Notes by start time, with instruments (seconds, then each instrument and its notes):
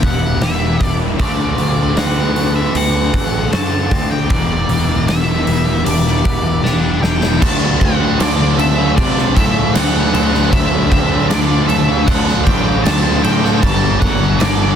Already playing: distorted electric guitar E2 B2 E3, overdriven electric guitar E3 G3 B3 E4, clean electric guitar D4, ambient pad G4 E5 B5 D6
0.03 picked electric bass E1, clean electric guitar B3, lead electric guitar F#5, kick, open hi-hat
0.41 picked electric bass E1, clean electric guitar G4, lead electric guitar E5, snare, open hi-hat
0.81 picked electric bass E1, clean electric guitar D4, kick, open hi-hat
0.85 lead electric guitar D5
1.18 picked electric bass D2, distorted electric guitar D3 A3 D4, overdriven electric guitar D3 A3 C4 F#4, clean electric guitar F#3, ambient pad A4 F#5 C6 D6, lead electric guitar D5, kick, open hi-hat
1.58 picked electric bass D2, clean electric guitar F#3, open hi-hat
1.97 picked electric bass D2, clean electric guitar C4, lead electric guitar F#5, snare, open hi-hat
2.36 clean electric guitar F#3, open hi-hat
2.56 lead electric guitar E5
2.75 picked electric bass D2, clean electric guitar C4, lead electric guitar F#5, open hi-hat
3.14 picked electric bass A1, clean electric guitar A3, kick, open hi-hat
3.53 picked electric bass F#2, clean electric guitar F#4, lead electric guitar A5, snare, open hi-hat
3.91 picked electric bass D2, clean electric guitar C4, kick, open hi-hat
4.11 lead electric guitar G5
4.29 picked electric bass E1, distorted electric guitar E2 B2 E3, overdriven electric guitar E3 G3 B3 E4, clean electric guitar E3, ambient pad G4 E5 B5, lead electric guitar D5, kick, open hi-hat
4.69 picked electric bass E1, clean electric guitar E3, open hi-hat
5.08 picked electric bass E1, clean electric guitar D4, lead electric guitar E5, snare, open hi-hat
5.47 picked electric bass E1, clean electric guitar E3, open hi-hat
5.85 picked electric bass E1, clean electric guitar D4, lead electric guitar D5, open hi-hat
6.07 snare
6.25 picked electric bass E1, clean electric guitar B3, kick, open hi-hat
6.64 picked electric bass E1, clean electric guitar G4, lead electric guitar A5, snare
7.03 picked electric bass E1, clean electric guitar D4, lead electric guitar G5, snare
7.23 snare
7.41 picked electric bass D2, overdriven electric guitar D3 A3 C4 F#4, distorted electric guitar D3 A3 D4, clean electric guitar F#3, ambient pad F#3 C5 A5 D6, lead electric guitar A5, kick, crash, tambourine
7.80 picked electric bass D2, clean electric guitar C4, lead electric guitar F#5, kick, crash
7.99 overdriven electric guitar A3 C4 F#4, distorted electric guitar A3 D4
8.18 picked electric bass D2, overdriven electric guitar D3 A3 C4 F#4, distorted electric guitar D3 A3 D4, clean electric guitar D4, lead electric guitar D5, snare, tambourine, crash
8.39 distorted electric guitar A3 D4
8.58 picked electric bass D2, overdriven electric guitar D3 A3 C4 F#4, clean electric guitar A4, lead electric guitar E5, muted distorted electric guitar stroke, tambourine, crash
8.78 distorted electric guitar A3 D4, muted overdriven electric guitar stroke
8.96 picked electric bass C3, overdriven electric guitar D3 A3 C4 F#4, clean electric guitar D4, lead electric guitar D5, kick, tambourine, crash
9.17 distorted electric guitar A3 D4, snare
9.35 picked electric bass A2, overdriven electric guitar D3 A3 C4 F#4, distorted electric guitar D3 A3 D4, clean electric guitar F#3, lead electric guitar E5, kick, tambourine, crash
9.55 muted overdriven electric guitar stroke
9.74 picked electric bass D2, overdriven electric guitar D3 A3 C4 F#4, distorted electric guitar D3 A3 D4, clean electric guitar C4, lead electric guitar F#5, snare, tambourine, crash
9.96 distorted electric guitar A3 D4
10.13 picked electric bass D2, overdriven electric guitar D3 A3 C4 F#4, distorted electric guitar D3 A3 D4, clean electric guitar A4, tambourine, crash
10.33 overdriven electric guitar A3 C4 F#4, distorted electric guitar A3 D4, snare
10.51 picked electric bass D2, overdriven electric guitar D3 A3 C4, distorted electric guitar D3 A3, clean electric guitar F#3, lead electric guitar E5, kick, tambourine, crash
10.56 distorted electric guitar D4, overdriven electric guitar F#4
10.91 picked electric bass D2, clean electric guitar C4, lead electric guitar E5, kick, crash
11.11 distorted electric guitar A3 D4, overdriven electric guitar A3 C4 F#4
11.29 picked electric bass D2, overdriven electric guitar D3 A3 C4 F#4, distorted electric guitar D3 A3, clean electric guitar D4, lead electric guitar D5, snare, tambourine, crash
11.33 distorted electric guitar D4
11.50 distorted electric guitar A3 D4
11.68 overdriven electric guitar D3 A3 C4 F#4, clean electric guitar A4, lead electric guitar E5, muted distorted electric guitar stroke, tambourine, crash
11.88 distorted electric guitar A3 D4, muted overdriven electric guitar stroke
12.07 picked electric bass D2, overdriven electric guitar D3 A3 C4, clean electric guitar D4, lead electric guitar F#5, kick, tambourine, crash
12.11 overdriven electric guitar F#4
12.27 distorted electric guitar A3 D4, snare
12.45 picked electric bass A1, distorted electric guitar D3 A3 D4, overdriven electric guitar D3 A3 C4, clean electric guitar F#3, lead electric guitar G5, kick, tambourine, crash
12.50 overdriven electric guitar F#4
12.66 muted overdriven electric guitar stroke
12.84 picked electric bass D2, overdriven electric guitar D3 A3 C4, distorted electric guitar D3 A3 D4, clean electric guitar C4, lead electric guitar A5, snare, tambourine, crash
12.88 overdriven electric guitar F#4
13.04 distorted electric guitar A3 D4
13.23 picked electric bass A2, overdriven electric guitar D3 A3 C4 F#4, distorted electric guitar D3 A3 D4, clean electric guitar A4, lead electric guitar G5, tambourine, crash
13.43 distorted electric guitar A3 D4, overdriven electric guitar A3 C4 F#4, snare
13.62 picked electric bass G1, overdriven electric guitar G2 D3 G3 A#3 D4 G4, distorted electric guitar G2 D3 G3, clean electric guitar G3, ambient pad A#3 G4, lead electric guitar A5, kick, tambourine, crash
14.01 picked electric bass G1, clean electric guitar A#3, lead electric guitar F#5, kick, crash
14.20 distorted electric guitar D3 G3, overdriven electric guitar G3 A#3 D4 G4
14.39 picked electric bass G1, overdriven electric guitar G2 D3 G3 A#3 D4 G4, distorted electric guitar G2 D3 G3, clean electric guitar D4, lead electric guitar D5, snare, tambourine, crash
14.59 distorted electric guitar D3 G3